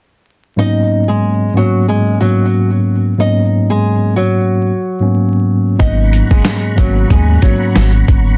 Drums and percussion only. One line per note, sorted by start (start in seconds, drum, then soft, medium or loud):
5.80 kick loud
5.80 closed hi-hat medium
6.13 closed hi-hat medium
6.31 kick loud
6.45 snare loud
6.45 closed hi-hat loud
6.78 kick loud
6.78 closed hi-hat medium
7.10 kick medium
7.10 closed hi-hat medium
7.42 kick medium
7.42 closed hi-hat medium
7.75 snare loud
7.75 closed hi-hat loud
8.08 kick loud
8.08 closed hi-hat medium